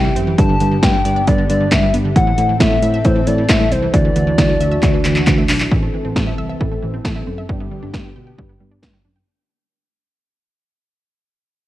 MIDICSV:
0, 0, Header, 1, 6, 480
1, 0, Start_track
1, 0, Key_signature, 1, "major"
1, 0, Tempo, 444444
1, 413, Time_signature, 4, 2, 24, 8
1, 12613, End_track
2, 0, Start_track
2, 0, Title_t, "Soft synth lead"
2, 0, Program_c, 0, 80
2, 0, Note_on_c, 0, 79, 84
2, 172, Note_off_c, 0, 79, 0
2, 415, Note_on_c, 0, 81, 115
2, 896, Note_on_c, 0, 79, 100
2, 912, Note_off_c, 0, 81, 0
2, 1371, Note_off_c, 0, 79, 0
2, 1377, Note_on_c, 0, 74, 97
2, 1598, Note_off_c, 0, 74, 0
2, 1615, Note_on_c, 0, 74, 82
2, 1856, Note_on_c, 0, 76, 84
2, 1872, Note_off_c, 0, 74, 0
2, 2095, Note_off_c, 0, 76, 0
2, 2334, Note_on_c, 0, 78, 116
2, 2780, Note_off_c, 0, 78, 0
2, 2815, Note_on_c, 0, 76, 108
2, 3292, Note_on_c, 0, 72, 101
2, 3308, Note_off_c, 0, 76, 0
2, 3531, Note_on_c, 0, 74, 93
2, 3547, Note_off_c, 0, 72, 0
2, 3771, Note_on_c, 0, 76, 104
2, 3787, Note_off_c, 0, 74, 0
2, 4013, Note_on_c, 0, 72, 91
2, 4029, Note_off_c, 0, 76, 0
2, 4244, Note_off_c, 0, 72, 0
2, 4250, Note_on_c, 0, 74, 97
2, 5648, Note_off_c, 0, 74, 0
2, 12613, End_track
3, 0, Start_track
3, 0, Title_t, "Analog synth pad"
3, 0, Program_c, 1, 89
3, 0, Note_on_c, 1, 52, 85
3, 0, Note_on_c, 1, 60, 76
3, 0, Note_on_c, 1, 67, 94
3, 371, Note_off_c, 1, 52, 0
3, 394, Note_off_c, 1, 60, 0
3, 412, Note_on_c, 1, 50, 86
3, 412, Note_on_c, 1, 59, 78
3, 2295, Note_off_c, 1, 67, 0
3, 2313, Note_off_c, 1, 50, 0
3, 2313, Note_off_c, 1, 59, 0
3, 2331, Note_on_c, 1, 60, 76
3, 2332, Note_on_c, 1, 52, 85
3, 2332, Note_on_c, 1, 69, 91
3, 4233, Note_off_c, 1, 60, 0
3, 4233, Note_off_c, 1, 69, 0
3, 4250, Note_on_c, 1, 62, 79
3, 4251, Note_on_c, 1, 66, 93
3, 6134, Note_off_c, 1, 52, 0
3, 6152, Note_off_c, 1, 62, 0
3, 6153, Note_off_c, 1, 66, 0
3, 6173, Note_on_c, 1, 52, 81
3, 6174, Note_on_c, 1, 69, 90
3, 6175, Note_on_c, 1, 60, 76
3, 8074, Note_off_c, 1, 52, 0
3, 8074, Note_off_c, 1, 69, 0
3, 8075, Note_off_c, 1, 60, 0
3, 8094, Note_on_c, 1, 50, 80
3, 8094, Note_on_c, 1, 59, 76
3, 8094, Note_on_c, 1, 67, 88
3, 9994, Note_off_c, 1, 50, 0
3, 9994, Note_off_c, 1, 59, 0
3, 9994, Note_off_c, 1, 67, 0
3, 12613, End_track
4, 0, Start_track
4, 0, Title_t, "Synth arpeggio sound"
4, 0, Program_c, 2, 84
4, 51, Note_on_c, 2, 55, 77
4, 113, Note_off_c, 2, 55, 0
4, 170, Note_on_c, 2, 60, 82
4, 232, Note_off_c, 2, 60, 0
4, 291, Note_on_c, 2, 52, 78
4, 353, Note_off_c, 2, 52, 0
4, 410, Note_on_c, 2, 50, 95
4, 473, Note_off_c, 2, 50, 0
4, 531, Note_on_c, 2, 50, 78
4, 593, Note_off_c, 2, 50, 0
4, 651, Note_on_c, 2, 50, 80
4, 713, Note_off_c, 2, 50, 0
4, 771, Note_on_c, 2, 50, 77
4, 833, Note_off_c, 2, 50, 0
4, 891, Note_on_c, 2, 50, 87
4, 953, Note_off_c, 2, 50, 0
4, 1012, Note_on_c, 2, 55, 76
4, 1074, Note_off_c, 2, 55, 0
4, 1131, Note_on_c, 2, 74, 91
4, 1193, Note_off_c, 2, 74, 0
4, 1252, Note_on_c, 2, 74, 86
4, 1314, Note_off_c, 2, 74, 0
4, 1372, Note_on_c, 2, 50, 92
4, 1434, Note_off_c, 2, 50, 0
4, 1491, Note_on_c, 2, 50, 72
4, 1554, Note_off_c, 2, 50, 0
4, 1612, Note_on_c, 2, 50, 81
4, 1674, Note_off_c, 2, 50, 0
4, 1731, Note_on_c, 2, 50, 72
4, 1793, Note_off_c, 2, 50, 0
4, 1852, Note_on_c, 2, 50, 90
4, 1914, Note_off_c, 2, 50, 0
4, 1971, Note_on_c, 2, 55, 75
4, 2034, Note_off_c, 2, 55, 0
4, 2093, Note_on_c, 2, 59, 85
4, 2155, Note_off_c, 2, 59, 0
4, 2213, Note_on_c, 2, 50, 75
4, 2275, Note_off_c, 2, 50, 0
4, 2332, Note_on_c, 2, 52, 101
4, 2394, Note_off_c, 2, 52, 0
4, 2453, Note_on_c, 2, 52, 76
4, 2515, Note_off_c, 2, 52, 0
4, 2573, Note_on_c, 2, 52, 81
4, 2635, Note_off_c, 2, 52, 0
4, 2692, Note_on_c, 2, 52, 74
4, 2754, Note_off_c, 2, 52, 0
4, 2812, Note_on_c, 2, 52, 89
4, 2874, Note_off_c, 2, 52, 0
4, 2933, Note_on_c, 2, 57, 77
4, 2995, Note_off_c, 2, 57, 0
4, 3052, Note_on_c, 2, 76, 94
4, 3114, Note_off_c, 2, 76, 0
4, 3174, Note_on_c, 2, 76, 84
4, 3235, Note_off_c, 2, 76, 0
4, 3293, Note_on_c, 2, 52, 88
4, 3355, Note_off_c, 2, 52, 0
4, 3412, Note_on_c, 2, 52, 72
4, 3474, Note_off_c, 2, 52, 0
4, 3533, Note_on_c, 2, 52, 80
4, 3595, Note_off_c, 2, 52, 0
4, 3653, Note_on_c, 2, 52, 76
4, 3715, Note_off_c, 2, 52, 0
4, 3773, Note_on_c, 2, 52, 89
4, 3835, Note_off_c, 2, 52, 0
4, 3893, Note_on_c, 2, 57, 77
4, 3955, Note_off_c, 2, 57, 0
4, 4012, Note_on_c, 2, 60, 84
4, 4074, Note_off_c, 2, 60, 0
4, 4132, Note_on_c, 2, 52, 76
4, 4194, Note_off_c, 2, 52, 0
4, 4252, Note_on_c, 2, 52, 98
4, 4314, Note_off_c, 2, 52, 0
4, 4372, Note_on_c, 2, 52, 73
4, 4434, Note_off_c, 2, 52, 0
4, 4491, Note_on_c, 2, 52, 78
4, 4553, Note_off_c, 2, 52, 0
4, 4612, Note_on_c, 2, 52, 77
4, 4674, Note_off_c, 2, 52, 0
4, 4732, Note_on_c, 2, 52, 89
4, 4794, Note_off_c, 2, 52, 0
4, 4852, Note_on_c, 2, 57, 78
4, 4914, Note_off_c, 2, 57, 0
4, 4972, Note_on_c, 2, 76, 89
4, 5034, Note_off_c, 2, 76, 0
4, 5091, Note_on_c, 2, 76, 86
4, 5154, Note_off_c, 2, 76, 0
4, 5210, Note_on_c, 2, 52, 87
4, 5273, Note_off_c, 2, 52, 0
4, 5331, Note_on_c, 2, 52, 74
4, 5393, Note_off_c, 2, 52, 0
4, 5450, Note_on_c, 2, 52, 81
4, 5512, Note_off_c, 2, 52, 0
4, 5571, Note_on_c, 2, 52, 75
4, 5633, Note_off_c, 2, 52, 0
4, 5691, Note_on_c, 2, 52, 88
4, 5753, Note_off_c, 2, 52, 0
4, 5812, Note_on_c, 2, 57, 77
4, 5874, Note_off_c, 2, 57, 0
4, 5932, Note_on_c, 2, 62, 80
4, 5994, Note_off_c, 2, 62, 0
4, 6052, Note_on_c, 2, 52, 77
4, 6114, Note_off_c, 2, 52, 0
4, 6172, Note_on_c, 2, 52, 96
4, 6234, Note_off_c, 2, 52, 0
4, 6293, Note_on_c, 2, 57, 76
4, 6355, Note_off_c, 2, 57, 0
4, 6412, Note_on_c, 2, 52, 72
4, 6474, Note_off_c, 2, 52, 0
4, 6531, Note_on_c, 2, 60, 80
4, 6593, Note_off_c, 2, 60, 0
4, 6653, Note_on_c, 2, 69, 91
4, 6715, Note_off_c, 2, 69, 0
4, 6773, Note_on_c, 2, 76, 80
4, 6834, Note_off_c, 2, 76, 0
4, 6893, Note_on_c, 2, 76, 86
4, 6954, Note_off_c, 2, 76, 0
4, 7014, Note_on_c, 2, 76, 83
4, 7075, Note_off_c, 2, 76, 0
4, 7133, Note_on_c, 2, 52, 86
4, 7194, Note_off_c, 2, 52, 0
4, 7253, Note_on_c, 2, 57, 74
4, 7314, Note_off_c, 2, 57, 0
4, 7373, Note_on_c, 2, 52, 75
4, 7434, Note_off_c, 2, 52, 0
4, 7494, Note_on_c, 2, 60, 78
4, 7556, Note_off_c, 2, 60, 0
4, 7612, Note_on_c, 2, 69, 92
4, 7674, Note_off_c, 2, 69, 0
4, 7732, Note_on_c, 2, 76, 79
4, 7794, Note_off_c, 2, 76, 0
4, 7853, Note_on_c, 2, 60, 79
4, 7915, Note_off_c, 2, 60, 0
4, 7973, Note_on_c, 2, 76, 81
4, 8034, Note_off_c, 2, 76, 0
4, 8092, Note_on_c, 2, 55, 95
4, 8154, Note_off_c, 2, 55, 0
4, 8213, Note_on_c, 2, 59, 77
4, 8274, Note_off_c, 2, 59, 0
4, 8333, Note_on_c, 2, 55, 70
4, 8395, Note_off_c, 2, 55, 0
4, 8454, Note_on_c, 2, 62, 78
4, 8515, Note_off_c, 2, 62, 0
4, 8573, Note_on_c, 2, 71, 86
4, 8634, Note_off_c, 2, 71, 0
4, 8692, Note_on_c, 2, 79, 78
4, 8754, Note_off_c, 2, 79, 0
4, 8812, Note_on_c, 2, 79, 86
4, 8874, Note_off_c, 2, 79, 0
4, 8931, Note_on_c, 2, 79, 78
4, 8993, Note_off_c, 2, 79, 0
4, 9052, Note_on_c, 2, 55, 84
4, 9114, Note_off_c, 2, 55, 0
4, 9172, Note_on_c, 2, 59, 69
4, 9234, Note_off_c, 2, 59, 0
4, 9292, Note_on_c, 2, 55, 73
4, 9354, Note_off_c, 2, 55, 0
4, 9411, Note_on_c, 2, 62, 76
4, 9473, Note_off_c, 2, 62, 0
4, 9531, Note_on_c, 2, 71, 87
4, 9593, Note_off_c, 2, 71, 0
4, 9651, Note_on_c, 2, 79, 78
4, 9713, Note_off_c, 2, 79, 0
4, 9772, Note_on_c, 2, 62, 77
4, 9834, Note_off_c, 2, 62, 0
4, 9892, Note_on_c, 2, 79, 81
4, 9954, Note_off_c, 2, 79, 0
4, 12613, End_track
5, 0, Start_track
5, 0, Title_t, "Tine electric piano"
5, 0, Program_c, 3, 4
5, 173, Note_on_c, 3, 42, 91
5, 341, Note_off_c, 3, 42, 0
5, 412, Note_on_c, 3, 43, 116
5, 581, Note_off_c, 3, 43, 0
5, 653, Note_on_c, 3, 43, 105
5, 821, Note_off_c, 3, 43, 0
5, 891, Note_on_c, 3, 43, 111
5, 1059, Note_off_c, 3, 43, 0
5, 1132, Note_on_c, 3, 43, 99
5, 1300, Note_off_c, 3, 43, 0
5, 1375, Note_on_c, 3, 43, 106
5, 1542, Note_off_c, 3, 43, 0
5, 1612, Note_on_c, 3, 43, 106
5, 1780, Note_off_c, 3, 43, 0
5, 1852, Note_on_c, 3, 43, 100
5, 2020, Note_off_c, 3, 43, 0
5, 2092, Note_on_c, 3, 43, 96
5, 2260, Note_off_c, 3, 43, 0
5, 2331, Note_on_c, 3, 45, 106
5, 2500, Note_off_c, 3, 45, 0
5, 2573, Note_on_c, 3, 45, 109
5, 2741, Note_off_c, 3, 45, 0
5, 2810, Note_on_c, 3, 45, 104
5, 2979, Note_off_c, 3, 45, 0
5, 3053, Note_on_c, 3, 45, 114
5, 3221, Note_off_c, 3, 45, 0
5, 3294, Note_on_c, 3, 45, 115
5, 3462, Note_off_c, 3, 45, 0
5, 3531, Note_on_c, 3, 45, 106
5, 3700, Note_off_c, 3, 45, 0
5, 3773, Note_on_c, 3, 45, 102
5, 3941, Note_off_c, 3, 45, 0
5, 4011, Note_on_c, 3, 36, 95
5, 4179, Note_off_c, 3, 36, 0
5, 4252, Note_on_c, 3, 38, 118
5, 4420, Note_off_c, 3, 38, 0
5, 4491, Note_on_c, 3, 38, 102
5, 4660, Note_off_c, 3, 38, 0
5, 4732, Note_on_c, 3, 38, 109
5, 4900, Note_off_c, 3, 38, 0
5, 4972, Note_on_c, 3, 38, 98
5, 5141, Note_off_c, 3, 38, 0
5, 5214, Note_on_c, 3, 38, 105
5, 5382, Note_off_c, 3, 38, 0
5, 5452, Note_on_c, 3, 38, 105
5, 5620, Note_off_c, 3, 38, 0
5, 5693, Note_on_c, 3, 38, 109
5, 5861, Note_off_c, 3, 38, 0
5, 5932, Note_on_c, 3, 35, 102
5, 6101, Note_off_c, 3, 35, 0
5, 6172, Note_on_c, 3, 33, 108
5, 6341, Note_off_c, 3, 33, 0
5, 6533, Note_on_c, 3, 33, 93
5, 6617, Note_off_c, 3, 33, 0
5, 6652, Note_on_c, 3, 33, 96
5, 6820, Note_off_c, 3, 33, 0
5, 6893, Note_on_c, 3, 36, 88
5, 7061, Note_off_c, 3, 36, 0
5, 7135, Note_on_c, 3, 33, 99
5, 7302, Note_off_c, 3, 33, 0
5, 7373, Note_on_c, 3, 33, 97
5, 7541, Note_off_c, 3, 33, 0
5, 7613, Note_on_c, 3, 33, 93
5, 7781, Note_off_c, 3, 33, 0
5, 7854, Note_on_c, 3, 42, 92
5, 8022, Note_off_c, 3, 42, 0
5, 8093, Note_on_c, 3, 43, 100
5, 8261, Note_off_c, 3, 43, 0
5, 8454, Note_on_c, 3, 43, 89
5, 8538, Note_off_c, 3, 43, 0
5, 8572, Note_on_c, 3, 43, 94
5, 8741, Note_off_c, 3, 43, 0
5, 8813, Note_on_c, 3, 47, 86
5, 8981, Note_off_c, 3, 47, 0
5, 9056, Note_on_c, 3, 43, 94
5, 9223, Note_off_c, 3, 43, 0
5, 9294, Note_on_c, 3, 43, 91
5, 9461, Note_off_c, 3, 43, 0
5, 9533, Note_on_c, 3, 43, 84
5, 9701, Note_off_c, 3, 43, 0
5, 9774, Note_on_c, 3, 42, 81
5, 9941, Note_off_c, 3, 42, 0
5, 12613, End_track
6, 0, Start_track
6, 0, Title_t, "Drums"
6, 175, Note_on_c, 9, 42, 75
6, 283, Note_off_c, 9, 42, 0
6, 412, Note_on_c, 9, 36, 125
6, 412, Note_on_c, 9, 42, 85
6, 520, Note_off_c, 9, 36, 0
6, 520, Note_off_c, 9, 42, 0
6, 650, Note_on_c, 9, 42, 77
6, 758, Note_off_c, 9, 42, 0
6, 891, Note_on_c, 9, 36, 121
6, 893, Note_on_c, 9, 38, 109
6, 893, Note_on_c, 9, 42, 72
6, 999, Note_off_c, 9, 36, 0
6, 1001, Note_off_c, 9, 38, 0
6, 1001, Note_off_c, 9, 42, 0
6, 1133, Note_on_c, 9, 42, 73
6, 1241, Note_off_c, 9, 42, 0
6, 1372, Note_on_c, 9, 42, 76
6, 1375, Note_on_c, 9, 36, 110
6, 1480, Note_off_c, 9, 42, 0
6, 1483, Note_off_c, 9, 36, 0
6, 1613, Note_on_c, 9, 42, 85
6, 1721, Note_off_c, 9, 42, 0
6, 1849, Note_on_c, 9, 42, 81
6, 1852, Note_on_c, 9, 36, 119
6, 1855, Note_on_c, 9, 38, 127
6, 1855, Note_on_c, 9, 39, 104
6, 1957, Note_off_c, 9, 42, 0
6, 1960, Note_off_c, 9, 36, 0
6, 1963, Note_off_c, 9, 38, 0
6, 1963, Note_off_c, 9, 39, 0
6, 2093, Note_on_c, 9, 42, 76
6, 2201, Note_off_c, 9, 42, 0
6, 2332, Note_on_c, 9, 36, 127
6, 2332, Note_on_c, 9, 42, 83
6, 2440, Note_off_c, 9, 36, 0
6, 2440, Note_off_c, 9, 42, 0
6, 2570, Note_on_c, 9, 42, 79
6, 2678, Note_off_c, 9, 42, 0
6, 2811, Note_on_c, 9, 36, 115
6, 2812, Note_on_c, 9, 38, 110
6, 2812, Note_on_c, 9, 42, 68
6, 2919, Note_off_c, 9, 36, 0
6, 2920, Note_off_c, 9, 38, 0
6, 2920, Note_off_c, 9, 42, 0
6, 3052, Note_on_c, 9, 42, 75
6, 3160, Note_off_c, 9, 42, 0
6, 3292, Note_on_c, 9, 42, 73
6, 3295, Note_on_c, 9, 36, 108
6, 3400, Note_off_c, 9, 42, 0
6, 3403, Note_off_c, 9, 36, 0
6, 3533, Note_on_c, 9, 42, 86
6, 3641, Note_off_c, 9, 42, 0
6, 3769, Note_on_c, 9, 42, 79
6, 3772, Note_on_c, 9, 36, 124
6, 3775, Note_on_c, 9, 38, 126
6, 3775, Note_on_c, 9, 39, 106
6, 3877, Note_off_c, 9, 42, 0
6, 3880, Note_off_c, 9, 36, 0
6, 3883, Note_off_c, 9, 38, 0
6, 3883, Note_off_c, 9, 39, 0
6, 4015, Note_on_c, 9, 42, 74
6, 4123, Note_off_c, 9, 42, 0
6, 4252, Note_on_c, 9, 36, 127
6, 4252, Note_on_c, 9, 42, 80
6, 4360, Note_off_c, 9, 36, 0
6, 4360, Note_off_c, 9, 42, 0
6, 4491, Note_on_c, 9, 42, 76
6, 4599, Note_off_c, 9, 42, 0
6, 4731, Note_on_c, 9, 36, 116
6, 4733, Note_on_c, 9, 42, 71
6, 4734, Note_on_c, 9, 38, 110
6, 4839, Note_off_c, 9, 36, 0
6, 4841, Note_off_c, 9, 42, 0
6, 4842, Note_off_c, 9, 38, 0
6, 4973, Note_on_c, 9, 42, 72
6, 5081, Note_off_c, 9, 42, 0
6, 5212, Note_on_c, 9, 39, 62
6, 5213, Note_on_c, 9, 42, 76
6, 5215, Note_on_c, 9, 36, 109
6, 5320, Note_off_c, 9, 39, 0
6, 5321, Note_off_c, 9, 42, 0
6, 5323, Note_off_c, 9, 36, 0
6, 5452, Note_on_c, 9, 39, 83
6, 5453, Note_on_c, 9, 42, 85
6, 5560, Note_off_c, 9, 39, 0
6, 5561, Note_off_c, 9, 42, 0
6, 5572, Note_on_c, 9, 39, 73
6, 5680, Note_off_c, 9, 39, 0
6, 5689, Note_on_c, 9, 42, 80
6, 5692, Note_on_c, 9, 36, 118
6, 5692, Note_on_c, 9, 39, 103
6, 5797, Note_off_c, 9, 42, 0
6, 5800, Note_off_c, 9, 36, 0
6, 5800, Note_off_c, 9, 39, 0
6, 5932, Note_on_c, 9, 39, 108
6, 5933, Note_on_c, 9, 46, 76
6, 6040, Note_off_c, 9, 39, 0
6, 6041, Note_off_c, 9, 46, 0
6, 6051, Note_on_c, 9, 39, 101
6, 6159, Note_off_c, 9, 39, 0
6, 6172, Note_on_c, 9, 36, 115
6, 6280, Note_off_c, 9, 36, 0
6, 6652, Note_on_c, 9, 36, 109
6, 6654, Note_on_c, 9, 38, 101
6, 6760, Note_off_c, 9, 36, 0
6, 6762, Note_off_c, 9, 38, 0
6, 7136, Note_on_c, 9, 36, 101
6, 7244, Note_off_c, 9, 36, 0
6, 7613, Note_on_c, 9, 36, 106
6, 7615, Note_on_c, 9, 38, 115
6, 7721, Note_off_c, 9, 36, 0
6, 7723, Note_off_c, 9, 38, 0
6, 8093, Note_on_c, 9, 36, 113
6, 8201, Note_off_c, 9, 36, 0
6, 8572, Note_on_c, 9, 36, 104
6, 8575, Note_on_c, 9, 38, 100
6, 8680, Note_off_c, 9, 36, 0
6, 8683, Note_off_c, 9, 38, 0
6, 9056, Note_on_c, 9, 36, 102
6, 9164, Note_off_c, 9, 36, 0
6, 9533, Note_on_c, 9, 36, 106
6, 9536, Note_on_c, 9, 38, 113
6, 9641, Note_off_c, 9, 36, 0
6, 9644, Note_off_c, 9, 38, 0
6, 12613, End_track
0, 0, End_of_file